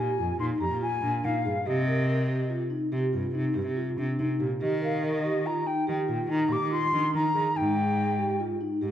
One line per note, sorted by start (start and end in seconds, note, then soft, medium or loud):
0.00 0.12 G4 medium
0.00 0.37 G#5 medium
0.18 0.34 F2 medium
0.18 0.33 F4 medium
0.39 0.56 A#2 medium
0.39 0.54 D#4 medium
0.39 0.46 C6 medium
0.60 0.68 F2 medium
0.60 0.75 G4 medium
0.60 0.80 A#5 medium
0.71 0.95 A#2 medium
0.81 0.96 F4 medium
0.81 1.26 G#5 medium
1.02 1.11 A#2 medium
1.02 1.17 D4 medium
1.24 1.32 A#2 medium
1.24 1.38 D#4 medium
1.24 1.68 F5 medium
1.45 1.53 G2 medium
1.45 1.60 G#4 medium
1.66 2.62 C3 loud
1.66 1.80 G4 medium
1.66 2.51 D#5 medium
1.88 2.02 A#4 medium
2.08 2.23 A#4 medium
2.29 2.44 G4 medium
2.50 2.65 F4 medium
2.70 2.85 D#4 medium
2.92 3.00 C3 medium
2.92 3.07 G4 medium
3.13 3.29 G2 medium
3.13 3.28 F4 medium
3.35 3.51 C3 medium
3.35 3.49 D#4 medium
3.55 3.64 G2 medium
3.55 3.70 G4 medium
3.66 3.90 C3 medium
3.77 3.91 F4 medium
3.98 4.06 C3 medium
3.98 4.13 D4 medium
4.19 4.27 C3 medium
4.19 4.34 D#4 medium
4.40 4.48 A#2 medium
4.40 4.55 G4 medium
4.61 5.57 D#3 medium
4.61 4.76 G4 medium
4.61 4.81 D#5 medium
4.82 4.96 A#4 medium
4.82 5.05 F5 medium
5.03 5.18 A#4 medium
5.03 5.48 D#5 medium
5.24 5.39 G4 medium
5.46 5.60 F4 medium
5.46 5.68 A#5 medium
5.66 5.81 D#4 medium
5.66 5.87 G5 medium
5.87 5.96 D#3 medium
5.87 6.02 G4 medium
5.87 6.32 G5 medium
6.08 6.25 A#2 medium
6.08 6.23 F4 medium
6.29 6.45 D#3 medium
6.29 6.44 D#4 medium
6.29 6.54 A#5 medium
6.50 6.58 A#2 medium
6.50 6.65 G4 medium
6.50 6.71 D6 medium
6.61 6.85 D#3 medium
6.71 6.86 F4 medium
6.71 7.11 C6 loud
6.92 7.01 D#3 medium
6.92 7.07 D4 medium
7.13 7.22 D#3 medium
7.13 7.28 D#4 medium
7.13 7.58 A#5 medium
7.34 7.43 D#3 medium
7.34 7.49 G#4 medium
7.55 8.51 G#2 loud
7.55 7.70 D#4 medium
7.55 8.40 G5 medium
7.76 7.91 G#4 medium
7.97 8.12 G#4 medium
8.18 8.33 G4 medium
8.40 8.55 F4 medium
8.61 8.75 D#4 medium
8.81 8.90 G#2 medium
8.81 8.91 G4 medium